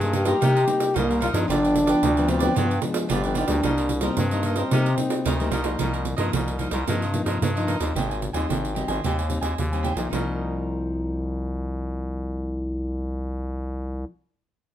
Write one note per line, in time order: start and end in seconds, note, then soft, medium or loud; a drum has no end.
0.00 0.34 G2 loud
0.00 0.39 G2 medium
0.00 0.25 G3 medium
0.00 0.25 A#3 medium
0.00 0.25 D#4 medium
0.00 0.17 G#4 medium
0.00 0.13 A#4 soft
0.00 0.13 C5 soft
0.00 0.13 D#5 soft
0.00 pandeiro soft
0.13 0.26 D#4 medium
0.13 0.26 G4 medium
0.13 0.26 A#4 soft
0.13 0.25 C5 soft
0.13 0.24 D#5 soft
0.13 pandeiro medium
0.25 0.37 G3 medium
0.25 0.37 A#3 medium
0.25 0.37 D#4 medium
0.25 0.98 G4 loud
0.25 0.40 A#4 medium
0.25 0.40 C5 medium
0.25 0.39 D#5 medium
0.25 pandeiro medium
0.41 0.65 C3 medium
0.41 0.93 C3 soft
0.41 0.58 G3 soft
0.41 0.58 A#3 medium
0.41 0.54 D#4 medium
0.41 0.58 D#4 soft
0.41 0.54 A#4 medium
0.41 0.54 C5 medium
0.41 0.54 D#5 medium
0.41 pandeiro medium
0.55 0.66 A#4 soft
0.55 0.66 C5 soft
0.55 0.66 D#5 soft
0.55 pandeiro soft
0.67 1.04 G3 medium
0.67 1.04 A#3 medium
0.67 1.04 D#4 medium
0.67 muted cavaquinho stroke soft
0.67 pandeiro medium
0.80 pandeiro medium
0.94 1.30 C2 medium
0.94 1.47 G2 medium
0.94 1.22 A#3 medium
0.94 1.07 D#4 medium
0.94 1.08 A#4 medium
0.94 1.08 C5 medium
0.94 1.08 D#5 medium
0.94 pandeiro medium
1.09 1.32 G3 medium
1.09 1.32 A#3 medium
1.09 1.32 D#4 medium
1.09 1.20 A#4 soft
1.09 1.21 C5 soft
1.09 1.21 D#5 soft
1.09 pandeiro soft
1.20 1.34 D#4 medium
1.20 1.29 F4 medium
1.20 1.33 A#4 medium
1.20 1.32 C5 medium
1.20 1.31 D#5 medium
1.20 pandeiro medium
1.32 1.46 G2 medium
1.32 1.84 F3 medium
1.32 1.85 B3 medium
1.32 1.85 D4 medium
1.32 1.48 D#4 medium
1.32 1.48 A#4 soft
1.32 1.47 C5 soft
1.32 1.46 D#5 soft
1.32 pandeiro medium
1.48 1.95 G1 medium
1.48 2.01 G2 soft
1.48 2.30 D4 loud
1.48 1.61 F4 medium
1.48 1.61 G4 medium
1.48 1.62 B4 medium
1.48 1.61 D5 medium
1.48 pandeiro medium
1.62 1.73 G4 soft
1.62 1.74 B4 soft
1.62 1.75 D5 soft
1.62 pandeiro soft
1.74 muted cavaquinho stroke soft
1.74 pandeiro medium
1.86 2.11 F3 medium
1.86 2.12 B3 medium
1.86 2.12 D4 medium
1.86 2.15 G4 medium
1.86 2.14 B4 medium
1.86 2.13 D5 medium
1.86 pandeiro medium
2.03 2.49 D2 medium
2.03 2.54 D3 medium
2.03 pandeiro medium
2.16 2.40 F3 medium
2.16 2.40 B3 medium
2.16 2.40 D4 medium
2.16 2.27 G4 soft
2.16 2.28 B4 soft
2.16 2.28 D5 soft
2.16 pandeiro soft
2.27 2.59 C4 medium
2.27 2.41 F4 soft
2.27 2.40 G4 soft
2.27 2.39 B4 soft
2.27 2.38 D5 soft
2.27 pandeiro medium
2.39 2.52 F3 medium
2.39 2.52 B3 medium
2.39 2.52 D4 medium
2.39 2.55 G4 medium
2.39 2.54 B4 medium
2.39 2.53 D5 medium
2.39 pandeiro medium
2.55 2.80 G2 medium
2.55 3.08 G2 soft
2.55 2.73 F3 medium
2.55 2.85 B3 medium
2.55 2.73 B3 medium
2.55 2.68 F4 medium
2.55 2.69 G4 medium
2.55 2.69 B4 medium
2.55 2.68 D5 medium
2.55 pandeiro medium
2.59 2.74 D4 medium
2.69 2.80 G4 soft
2.69 2.81 B4 soft
2.69 2.81 D5 soft
2.69 pandeiro soft
2.81 3.19 F3 medium
2.81 3.10 G#3 medium
2.81 3.20 B3 medium
2.81 3.20 D4 medium
2.81 muted cavaquinho stroke soft
2.81 pandeiro medium
2.94 pandeiro medium
3.09 3.45 G1 medium
3.09 3.62 D3 medium
3.09 3.38 G3 medium
3.09 3.22 F4 medium
3.09 3.22 G4 medium
3.09 3.23 B4 medium
3.09 3.22 D5 medium
3.09 pandeiro medium
3.23 3.47 F3 medium
3.23 3.48 B3 medium
3.23 3.48 D4 medium
3.23 3.34 G4 soft
3.23 3.35 B4 soft
3.23 3.36 D5 soft
3.23 pandeiro soft
3.34 3.48 D#4 medium
3.34 3.48 F4 medium
3.34 3.48 G4 medium
3.34 3.47 B4 medium
3.34 3.46 D5 medium
3.34 pandeiro medium
3.48 3.61 D2 medium
3.48 3.99 G3 medium
3.48 3.99 A#3 medium
3.48 4.04 D4 medium
3.48 3.63 G4 soft
3.48 3.62 B4 soft
3.48 3.62 D5 soft
3.48 pandeiro medium
3.63 4.10 C2 medium
3.63 4.16 C3 medium
3.63 3.76 D#4 medium
3.63 3.76 A#4 medium
3.63 3.77 C5 medium
3.63 3.76 D#5 medium
3.63 pandeiro medium
3.77 3.89 A#4 soft
3.77 3.89 C5 soft
3.77 3.90 D#5 soft
3.77 pandeiro soft
3.89 muted cavaquinho stroke soft
3.89 pandeiro soft
4.01 4.26 G3 medium
4.01 4.26 A#3 medium
4.01 4.46 C4 medium
4.01 4.27 D#4 medium
4.01 4.30 A#4 soft
4.01 4.29 C5 medium
4.01 4.29 D#5 medium
4.01 pandeiro medium
4.17 4.64 G2 medium
4.17 4.69 G2 soft
4.17 pandeiro medium
4.31 4.68 G3 medium
4.31 4.68 A#3 medium
4.31 4.68 D#4 medium
4.31 4.43 A#4 soft
4.31 4.44 C5 soft
4.31 4.44 D#5 soft
4.31 pandeiro soft
4.43 4.59 A#3 medium
4.43 4.57 D#4 soft
4.43 4.57 A#4 soft
4.43 4.56 C5 soft
4.43 4.55 D#5 soft
4.43 pandeiro soft
4.56 5.52 C4 medium
4.56 4.71 A#4 medium
4.56 4.70 C5 medium
4.56 4.70 D#5 medium
4.56 pandeiro medium
4.71 4.95 C3 medium
4.71 5.23 C3 soft
4.71 4.88 G3 soft
4.71 4.88 A#3 soft
4.71 4.84 D#4 medium
4.71 4.88 D#4 medium
4.71 4.85 A#4 medium
4.71 4.85 C5 medium
4.71 4.85 D#5 medium
4.71 pandeiro medium
4.86 4.96 A#4 soft
4.86 4.97 C5 soft
4.86 4.97 D#5 soft
4.86 pandeiro soft
4.97 5.24 G3 medium
4.97 5.24 A#3 soft
4.97 5.24 D#4 medium
4.97 muted cavaquinho stroke soft
4.97 pandeiro medium
5.10 pandeiro medium
5.25 5.50 D2 medium
5.25 5.77 G2 medium
5.25 5.38 D#4 medium
5.25 5.38 A#4 medium
5.25 5.38 C5 medium
5.25 5.38 D#5 medium
5.25 pandeiro medium
5.40 5.63 G3 medium
5.40 5.63 A#3 medium
5.40 5.63 D#4 medium
5.40 5.51 A#4 soft
5.40 5.51 C5 soft
5.40 5.52 D#5 soft
5.40 pandeiro soft
5.51 5.77 C2 medium
5.51 5.64 D#4 medium
5.51 5.64 A#4 medium
5.51 5.63 C5 medium
5.51 5.61 D#5 medium
5.51 pandeiro medium
5.63 6.15 F3 medium
5.63 6.15 A#3 medium
5.63 6.16 D#4 medium
5.63 5.78 A#4 soft
5.63 5.77 C5 soft
5.63 5.77 D#5 soft
5.63 pandeiro medium
5.79 6.15 C2 medium
5.79 6.32 C3 soft
5.79 5.92 D#4 medium
5.79 5.92 A#4 medium
5.79 5.92 C5 medium
5.79 5.91 D#5 medium
5.79 pandeiro medium
5.93 6.04 A#4 soft
5.93 6.04 C5 soft
5.93 6.04 D#5 soft
5.93 pandeiro soft
6.04 muted cavaquinho stroke soft
6.04 pandeiro soft
6.17 6.31 G2 medium
6.17 6.56 F3 medium
6.17 6.56 A#3 medium
6.17 6.56 D#4 medium
6.17 6.32 A#4 soft
6.17 6.31 C5 medium
6.17 6.31 D#5 medium
6.17 pandeiro medium
6.32 6.68 C2 medium
6.32 6.85 G2 medium
6.32 6.57 D#4 soft
6.32 6.58 A#4 soft
6.32 6.59 C5 soft
6.32 6.60 D#5 soft
6.32 pandeiro medium
6.48 pandeiro soft
6.58 6.76 F3 soft
6.58 6.77 A#3 soft
6.58 6.72 D#4 soft
6.58 6.77 D#4 medium
6.58 6.72 A#4 soft
6.58 6.72 C5 soft
6.58 6.70 D#5 soft
6.58 pandeiro soft
6.71 6.84 C2 loud
6.71 6.86 A#4 medium
6.71 6.86 C5 medium
6.71 6.85 D#5 medium
6.71 pandeiro medium
6.87 7.22 G2 medium
6.87 7.39 C3 medium
6.87 7.04 F3 soft
6.87 7.04 A#3 medium
6.87 7.00 D#4 medium
6.87 7.04 D#4 medium
6.87 7.00 A#4 medium
6.87 7.01 C5 medium
6.87 7.01 D#5 medium
6.87 pandeiro medium
7.02 7.12 A#4 soft
7.02 7.13 C5 soft
7.02 7.13 D#5 soft
7.02 pandeiro soft
7.13 7.40 F3 medium
7.13 7.40 A#3 medium
7.13 7.40 D#4 medium
7.13 muted cavaquinho stroke soft
7.13 pandeiro medium
7.26 7.38 G2 medium
7.26 7.54 A#4 medium
7.26 7.53 C5 soft
7.26 7.53 D#5 medium
7.26 pandeiro medium
7.42 7.76 G2 loud
7.42 7.93 G2 medium
7.42 pandeiro medium
7.55 7.79 F3 medium
7.55 7.79 A#3 medium
7.55 7.79 D#4 medium
7.55 7.67 A#4 soft
7.55 7.67 C5 soft
7.55 7.68 D#5 soft
7.55 pandeiro soft
7.67 7.80 D#4 medium
7.67 7.81 A#4 medium
7.67 7.80 C5 medium
7.67 7.78 D#5 medium
7.67 pandeiro medium
7.80 7.93 D#2 medium
7.80 8.31 G3 medium
7.80 8.32 C4 medium
7.80 8.32 D#4 medium
7.80 7.94 A#4 soft
7.80 7.94 C5 soft
7.80 7.93 D#5 soft
7.80 pandeiro medium
7.95 8.30 G#1 medium
7.95 8.47 G#2 soft
7.95 8.08 G4 soft
7.95 8.08 C5 medium
7.95 8.09 D#5 medium
7.95 8.09 G#5 medium
7.95 pandeiro medium
8.10 8.21 C5 soft
8.10 8.21 D#5 soft
8.10 8.21 G#5 soft
8.10 pandeiro soft
8.21 muted cavaquinho stroke soft
8.21 pandeiro medium
8.33 8.46 D#2 medium
8.33 8.72 G3 medium
8.33 8.72 C4 medium
8.33 8.72 D#4 medium
8.33 8.48 C5 medium
8.33 8.48 D#5 medium
8.33 8.47 G#5 medium
8.33 pandeiro medium
8.49 8.85 G#1 medium
8.49 9.02 D#3 soft
8.49 8.74 G4 soft
8.49 8.75 C5 soft
8.49 8.75 D#5 soft
8.49 8.76 G#5 soft
8.49 pandeiro medium
8.65 pandeiro soft
8.75 8.99 G3 soft
8.75 8.99 C4 soft
8.75 8.99 D#4 soft
8.75 8.88 G4 soft
8.75 8.89 C5 soft
8.75 8.88 D#5 soft
8.75 8.87 G#5 soft
8.75 pandeiro soft
8.88 9.01 G#1 medium
8.88 9.03 C5 soft
8.88 9.02 D#5 medium
8.88 9.02 G#5 medium
8.88 pandeiro soft
9.03 9.39 D#2 medium
9.03 9.56 G#2 soft
9.03 9.20 G3 soft
9.03 9.20 C4 soft
9.03 9.20 D#4 medium
9.03 9.16 G4 medium
9.03 9.17 C5 medium
9.03 9.17 D#5 medium
9.03 9.17 G#5 medium
9.03 pandeiro medium
9.18 9.30 C5 soft
9.18 9.30 D#5 soft
9.18 9.30 G#5 soft
9.18 pandeiro soft
9.30 9.56 G3 medium
9.30 9.56 C4 soft
9.30 9.56 D#4 soft
9.30 muted cavaquinho stroke soft
9.30 pandeiro soft
9.41 9.55 D#2 medium
9.41 9.70 C5 soft
9.41 9.69 D#5 soft
9.41 9.69 G#5 medium
9.41 pandeiro medium
9.58 9.93 D#2 medium
9.58 10.09 D#3 soft
9.58 pandeiro medium
9.72 9.95 G3 soft
9.72 9.95 C4 soft
9.72 9.95 D#4 medium
9.72 9.83 C5 soft
9.72 9.83 D#5 soft
9.72 9.84 G#5 soft
9.72 pandeiro soft
9.83 9.96 G4 medium
9.83 9.97 C5 medium
9.83 9.96 D#5 medium
9.83 9.94 G#5 medium
9.83 pandeiro medium
9.96 10.09 B1 medium
9.96 10.14 F3 soft
9.96 10.19 A#3 soft
9.96 10.23 D#4 soft
9.96 10.11 C5 soft
9.96 10.10 D#5 soft
9.96 10.10 G#5 soft
9.96 pandeiro medium
10.09 14.05 C2 medium
10.09 14.05 C3 soft
10.09 14.06 D#4 medium
10.09 14.08 A#4 soft
10.09 14.09 C5 medium
10.09 pandeiro medium
10.14 14.11 F3 soft
10.14 14.10 D#5 medium
10.20 14.16 A#3 soft
10.24 14.21 D#4 medium